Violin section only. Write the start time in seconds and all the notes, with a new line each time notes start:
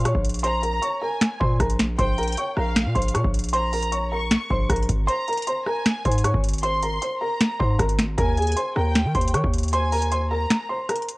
0.44 A#5
1.02 G#5
1.99 G5
2.57 F5
3.54 A#5
4.11 C#6
5.08 A#5
5.67 G#5
6.63 C6
7.21 A#5
8.18 G#5
8.76 G5
9.73 G#5
10.31 A#5